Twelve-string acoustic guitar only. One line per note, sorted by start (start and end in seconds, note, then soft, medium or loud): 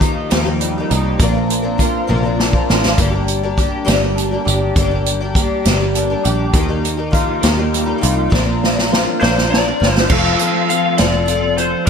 0.00 0.30 F3 medium
0.00 0.30 A#3 medium
0.00 0.30 D#4 medium
0.00 0.31 G4 medium
0.30 0.46 D#3 medium
0.30 0.46 F3 medium
0.30 0.46 A#3 medium
0.30 0.46 D#4 medium
0.30 0.44 G4 medium
0.45 0.77 A#3 soft
0.45 0.77 D#4 soft
0.45 0.75 G4 medium
0.78 0.92 A#3 soft
0.78 0.93 D#4 soft
0.78 0.92 G4 medium
0.92 1.21 F3 medium
0.92 1.22 A#3 medium
0.92 1.23 D#4 medium
0.92 1.22 G4 medium
1.21 1.35 A#2 medium
1.21 1.36 D3 medium
1.21 1.36 F3 medium
1.21 1.35 C4 medium
1.21 1.34 D4 medium
1.21 1.33 A#4 medium
1.34 1.64 F3 soft
1.34 1.63 C4 soft
1.34 1.62 D4 soft
1.34 1.61 A#4 medium
1.63 1.77 F3 soft
1.63 1.78 C4 soft
1.63 1.79 D4 medium
1.63 1.78 A#4 medium
1.78 2.08 F3 medium
1.78 2.08 C4 medium
1.78 2.09 D4 medium
1.78 2.08 A#4 medium
2.07 2.23 A#2 medium
2.07 2.23 D3 medium
2.07 2.24 F3 medium
2.07 2.24 C4 medium
2.07 2.24 D4 medium
2.07 2.22 A#4 medium
2.23 2.54 C4 soft
2.23 2.54 D4 soft
2.23 2.52 A#4 soft
2.27 2.54 F3 soft
2.53 2.68 F3 soft
2.53 2.69 C4 soft
2.53 2.69 D4 soft
2.53 2.68 A#4 medium
2.69 2.98 F3 medium
2.69 2.99 C4 medium
2.69 2.98 D4 medium
2.69 2.99 A#4 medium
2.98 3.12 G2 medium
2.98 3.13 D3 medium
2.98 3.13 G3 medium
2.98 3.12 A#3 medium
2.98 3.11 D4 medium
2.98 3.09 G4 medium
3.11 3.43 A#3 soft
3.11 3.42 D4 soft
3.11 3.41 G4 medium
3.15 3.43 G3 soft
3.43 3.56 G3 soft
3.43 3.58 A#3 soft
3.43 3.58 D4 medium
3.43 3.58 G4 medium
3.57 3.84 G3 medium
3.57 3.85 A#3 medium
3.57 3.85 D4 medium
3.57 3.85 G4 medium
3.85 4.00 G2 medium
3.85 4.00 D3 medium
3.85 4.01 G3 medium
3.85 4.01 A#3 medium
3.85 4.01 D4 medium
3.85 4.01 G4 medium
4.02 4.32 G3 soft
4.02 4.32 A#3 soft
4.02 4.31 D4 medium
4.02 4.30 G4 medium
4.31 4.44 G3 soft
4.31 4.46 A#3 soft
4.31 4.47 D4 soft
4.31 4.46 G4 soft
4.45 4.75 G3 medium
4.45 4.76 A#3 medium
4.45 4.76 D4 medium
4.45 4.77 G4 medium
4.77 4.91 G2 medium
4.77 4.91 D3 medium
4.77 4.92 G3 medium
4.77 4.91 A#3 medium
4.77 4.90 D4 medium
4.77 4.90 G4 medium
4.91 5.22 G3 soft
4.91 5.21 A#3 soft
4.91 5.21 D4 soft
4.91 5.19 G4 medium
5.21 5.34 G3 soft
5.21 5.36 A#3 medium
5.21 5.36 D4 medium
5.21 5.35 G4 medium
5.35 5.65 G3 medium
5.35 5.66 A#3 medium
5.35 5.66 D4 medium
5.40 5.67 G4 medium
5.66 5.80 G2 medium
5.66 5.80 D3 medium
5.66 5.81 G3 medium
5.66 5.81 A#3 medium
5.66 5.80 D4 medium
5.66 5.79 G4 medium
5.80 6.11 G3 soft
5.80 6.11 A#3 soft
5.80 6.10 D4 medium
5.80 6.09 G4 medium
6.10 6.23 G3 soft
6.10 6.25 A#3 soft
6.10 6.25 D4 medium
6.10 6.24 G4 soft
6.24 6.54 G3 medium
6.24 6.54 A#3 medium
6.24 6.55 D4 medium
6.24 6.55 G4 medium
6.54 6.69 D#3 medium
6.54 6.69 F3 medium
6.54 6.69 A#3 medium
6.54 6.69 D#4 medium
6.54 6.67 G4 medium
6.69 6.99 A#3 soft
6.69 6.98 D#4 soft
6.69 6.96 G4 medium
6.97 7.11 A#3 soft
6.97 7.12 D#4 medium
6.97 7.12 G4 medium
7.11 7.42 F3 medium
7.11 7.42 A#3 medium
7.11 7.43 D#4 medium
7.11 7.43 G4 medium
7.43 7.58 D#3 medium
7.43 7.58 F3 medium
7.43 7.58 A#3 medium
7.43 7.58 D#4 medium
7.43 7.56 G4 medium
7.57 7.88 A#3 soft
7.57 7.86 D#4 soft
7.57 7.84 G4 soft
7.86 8.00 A#3 soft
7.86 8.00 D#4 soft
7.86 8.01 G4 medium
7.98 8.30 F3 medium
7.98 8.31 A#3 medium
7.98 8.32 D#4 medium
7.98 8.32 G4 medium
8.30 8.46 A#2 medium
8.30 8.46 D3 medium
8.30 8.47 F3 medium
8.30 8.45 C4 medium
8.30 8.45 D4 medium
8.30 8.44 A#4 medium
8.45 8.76 F3 soft
8.45 8.75 C4 soft
8.45 8.74 D4 medium
8.45 8.72 A#4 medium
8.74 8.89 F3 soft
8.74 8.90 C4 soft
8.74 8.91 D4 soft
8.74 8.90 A#4 medium
8.90 9.20 F3 medium
8.90 9.20 C4 medium
8.90 9.21 D4 medium
8.90 9.22 A#4 medium
9.20 9.36 A#2 medium
9.20 9.36 D3 medium
9.20 9.36 F3 medium
9.20 9.36 C4 medium
9.20 9.35 D4 medium
9.20 9.34 A#4 medium
9.35 9.67 F3 soft
9.35 9.66 C4 soft
9.35 9.66 D4 medium
9.35 9.65 A#4 medium
9.66 9.78 F3 soft
9.66 9.79 C4 soft
9.66 9.80 D4 soft
9.66 9.81 A#4 medium
9.80 10.08 F3 medium
9.80 10.09 C4 medium
9.80 10.10 D4 medium
9.80 10.11 A#4 medium
10.09 10.39 F3 medium
10.09 10.40 C4 medium
10.09 10.40 F4 medium
10.09 10.40 A4 medium
10.41 10.70 C4 soft
10.41 10.70 F4 soft
10.41 10.70 A4 soft
10.69 10.98 F3 medium
10.69 10.99 C4 soft
10.69 10.97 F4 medium
10.69 10.97 A4 medium
10.98 11.25 F3 medium
10.98 11.26 C4 medium
10.98 11.27 F4 medium
10.98 11.28 A4 medium
11.26 11.57 F3 medium
11.26 11.58 C4 medium
11.26 11.58 F4 medium
11.26 11.56 A4 medium
11.58 11.89 C4 soft
11.58 11.89 F4 soft
11.58 11.88 A4 soft